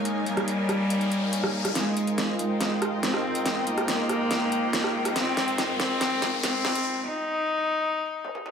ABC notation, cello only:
X:1
M:4/4
L:1/8
Q:1/4=141
K:Fm
V:1 name="Cello"
A, G,6- G, | A,3 A,3 C2- | C B,6- B, | C3 C3 C2- |
C E6- E |]